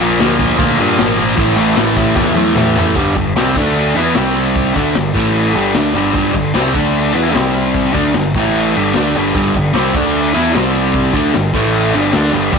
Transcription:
Already playing: A#1
0.01 A#2 F3 A#3, crash
0.19 D2 A#2 F3 A#3, snare, crash
0.39 A#2 F3 A#3, kick, crash
0.59 D2 A#2 F3 A#3, kick, crash
0.78 G2 A#2 F3 A#3, crash
0.99 G#1 A#2 F3 A#3, snare, crash
1.18 A#2 F3 A#3, crash
1.36 A1 A2 E3 A3, kick, crash
1.56 A2 E3 A3, crash
1.76 A1 A2 E3 A3, snare, crash
1.96 A2 E3 A3, kick, crash
2.15 E2 A2 E3 A3, kick, snare
2.35 A2 E3 A3, high tom
2.55 E2 A2 E3 A3, mid tom
2.76 A2 E3 A3, floor tom
2.95 G1 G2 D3 G3, kick, crash
3.16 G1 G2 D3, kick, crash
3.35 C2 C3 G3 C4, snare, crash
3.55 D2 D3 A3 D4, kick, crash
3.76 crash
3.95 E2 E3 B3 E4, snare, crash
4.15 C2 C3 G3 C4, snare, crash
4.25 snare
4.35 crash
4.55 kick, crash
4.74 D2 D3 A3 D4, kick, crash
4.95 G1 G2 D3, snare, crash
5.14 A1 A2 E3 A3, kick, crash
5.35 crash
5.54 G1 G2 D3 G3, crash
5.74 D2 D3 A3 D4, snare, crash
5.85 snare
5.93 G1 G2 D3 G3, crash
6.13 G1 G2 D3 G3, kick, crash
6.33 G1 G2 D3, kick, crash
6.54 C2 C3 G3 C4, snare, crash
6.74 D2 D3 A3 D4, kick, crash
6.95 crash
7.13 E2 E3 B3 E4, snare, crash
7.33 C2 C3 G3 C4, snare, crash
7.46 snare
7.56 crash
7.74 kick, crash
7.92 D2 D3 A3 D4, kick, crash
8.14 G1 G2 D3, snare, crash
8.34 A1 A2 E3, kick, crash
8.39 A3
8.55 crash
8.74 G1 G2 G3, crash
8.78 D3
8.94 D2 D3 A3 D4, snare, crash
9.14 G1 G2 D3 G3, crash
9.34 G1 G2 D3 G3, kick, crash
9.54 G1 G2 D3, kick, crash
9.73 C2 C3 G3 C4, snare, crash
9.94 D2 D3 A3 D4, kick, crash
10.15 crash
10.33 E2 E3 B3 E4, snare, crash
10.53 C2 C3 G3 C4, snare, crash
10.74 crash
10.94 kick, crash
11.13 D2 D3 A3 D4, kick, crash
11.34 G1 G2 D3, snare, crash
11.53 A1 A2 E3 A3, kick, crash
11.74 crash
11.93 G1 G2 D3 G3, snare, crash
12.12 D2 D3 A3 D4, snare, crash
12.31 G1 G2 D3 G3, crash
12.52 G1 G2 D3 G3, kick, crash

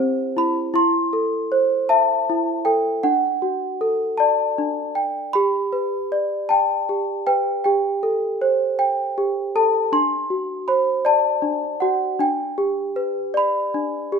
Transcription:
Already playing: C4 E4 G4 C5 G5
0.37 E4 B5
0.74 E4 C6
1.13 A4
1.52 C5
1.89 E5 A5
2.30 E4
2.65 A4 G5
3.03 D4 F#5
3.42 F#4
3.81 A4
4.18 D5 A5
4.58 D4
4.95 G5
5.33 G4 B5
5.73 B4
6.12 D5
6.49 G5 A5
6.89 G4
7.27 B4 G5
7.64 G4 G5
8.03 A4
8.41 C5
8.79 G5
9.18 G4
9.56 A4 A5
9.92 D4 C6
10.30 F#4
10.68 C5 B5
11.05 D5 A5
11.42 D4
11.80 F#4 F#5
12.19 D4 G5
12.58 G4
12.96 B4
13.34 D5 B5
13.74 D4
14.12 G4

